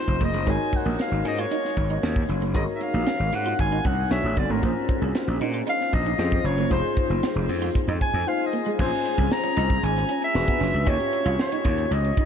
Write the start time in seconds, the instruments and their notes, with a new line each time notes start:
Already playing: tine electric piano D#4 F4 G#4 C5, soprano saxophone C5
0.08 slap bass F#1, kick
0.21 slap bass F1, clean electric guitar A#3, soprano saxophone D#5, kick, open hi-hat
0.34 slap bass F#1, clean electric guitar G#3
0.45 slap bass G#1, clean electric guitar G#3, tine electric piano D#4 F#4 A#4 C#5, kick, closed hi-hat
0.50 soprano saxophone G#5
0.73 soprano saxophone F#5, muted clean electric guitar stroke, kick, closed hi-hat
0.86 slap bass A#1, clean electric guitar A#3
0.99 soprano saxophone F5, muted clean electric guitar stroke, snare, closed hi-hat
1.11 slap bass G#1
1.25 slap bass G#2, clean electric guitar C#4, soprano saxophone D#5, closed hi-hat
1.38 clean electric guitar F4, soprano saxophone C#5
1.51 clean electric guitar D#4, closed hi-hat
1.65 snare
1.77 slap bass G#1, muted clean electric guitar stroke, kick, closed hi-hat
1.90 clean electric guitar D#4
2.03 slap bass D#2, clean electric guitar C#4, snare, closed hi-hat
2.16 kick
2.29 slap bass F#1, muted clean electric guitar stroke, closed hi-hat
2.42 clean electric guitar A#3
2.54 slap bass G#1, clean electric guitar G#3, tine electric piano D#4 F#4 A#4 C#5, soprano saxophone D#5, kick, closed hi-hat
2.75 soprano saxophone E5
2.81 soprano saxophone F5, muted clean electric guitar stroke, closed hi-hat
2.94 slap bass A#1, clean electric guitar A#3
3.07 clean electric guitar C#4, snare, closed hi-hat
3.20 slap bass G#1
3.33 slap bass G#2, soprano saxophone F#5, muted clean electric guitar stroke, closed hi-hat
3.46 clean electric guitar F4
3.59 slap bass G#1, soprano saxophone G#5, muted clean electric guitar stroke, kick, closed hi-hat
3.72 clean electric guitar D#4
3.84 slap bass C2, clean electric guitar C#4, soprano saxophone F#5, kick, closed hi-hat
4.11 slap bass B1, tine electric piano D4 F#4 A4 C#5, soprano saxophone E5, muted clean electric guitar stroke, snare, closed hi-hat
4.24 slap bass A1
4.37 slap bass F#1, clean electric guitar B3, soprano saxophone D5, kick, closed hi-hat
4.49 slap bass G#1, clean electric guitar A3, soprano saxophone A#4
4.62 slap bass A#1, clean electric guitar A#3, tine electric piano C#4 F4 G#4 C5, kick, closed hi-hat
4.89 muted clean electric guitar stroke, kick, closed hi-hat
5.02 slap bass C2, clean electric guitar C#4
5.15 muted clean electric guitar stroke, snare, closed hi-hat
5.28 slap bass A#1
5.41 slap bass A#2, clean electric guitar D#4, closed hi-hat
5.54 clean electric guitar F4
5.67 clean electric guitar D#4, soprano saxophone F5, closed hi-hat
5.81 snare
5.93 slap bass A#1, soprano saxophone D#5, muted clean electric guitar stroke, kick, closed hi-hat
6.06 clean electric guitar D#4
6.18 slap bass F2, tine electric piano C#4 F4 G#4 C5, clean electric guitar C#4, snare, closed hi-hat
6.32 kick
6.44 slap bass F#1, soprano saxophone C#5, muted clean electric guitar stroke, closed hi-hat
6.58 clean electric guitar A#3
6.70 slap bass F1, clean electric guitar G#3, tine electric piano D#4 F4 G#4 C5, soprano saxophone C5, kick, closed hi-hat
6.97 soprano saxophone C5, muted clean electric guitar stroke, kick, closed hi-hat
7.10 slap bass F#1, clean electric guitar A#3
7.23 clean electric guitar C4, snare, closed hi-hat
7.36 slap bass F1
7.49 slap bass F2, muted clean electric guitar stroke, open hi-hat
7.62 clean electric guitar F4
7.75 muted clean electric guitar stroke, kick, closed hi-hat
7.88 slap bass F2, clean electric guitar D#4
8.01 clean electric guitar C4, soprano saxophone G#5, kick, closed hi-hat
8.14 slap bass F2
8.27 tine electric piano D#4 F4 G#4 C5, soprano saxophone F5, muted clean electric guitar stroke
8.46 soprano saxophone D#5
8.53 clean electric guitar A#3
8.66 clean electric guitar G#3
8.79 slap bass A#1, clean electric guitar A#3, tine electric piano C#4 F4 G#4 C5, soprano saxophone G#5, kick, crash
8.93 closed hi-hat
9.05 muted clean electric guitar stroke, closed hi-hat
9.18 slap bass C2, clean electric guitar C#4, kick, closed hi-hat
9.31 soprano saxophone A#5, muted clean electric guitar stroke, snare
9.44 clean electric guitar C#4, closed hi-hat
9.57 slap bass C2, clean electric guitar D#4, closed hi-hat
9.70 kick, closed hi-hat
9.83 slap bass G#1, soprano saxophone G#5, closed hi-hat
9.97 snare, closed hi-hat
10.09 clean electric guitar C#4, closed hi-hat
10.22 soprano saxophone E5, closed hi-hat
10.35 slap bass E1, tine electric piano D4 F#4 G#4 B4, muted clean electric guitar stroke, snare
10.48 clean electric guitar B3, kick, closed hi-hat
10.60 slap bass F#1, clean electric guitar C#4, snare, open hi-hat
10.74 slap bass C#2, closed hi-hat
10.85 slap bass D#2, tine electric piano C#4 F4 G4 C#5, clean electric guitar D#4, kick, closed hi-hat
10.89 soprano saxophone C#5
11.00 closed hi-hat
11.13 muted clean electric guitar stroke, closed hi-hat
11.25 slap bass C2, clean electric guitar F4, closed hi-hat
11.39 soprano saxophone C#5, muted clean electric guitar stroke, snare
11.52 clean electric guitar D#4, closed hi-hat
11.65 slap bass D#2, clean electric guitar F4, kick, closed hi-hat
11.78 closed hi-hat
11.91 slap bass C#2, soprano saxophone D#5, closed hi-hat
12.05 closed hi-hat
12.17 clean electric guitar D#4, kick, closed hi-hat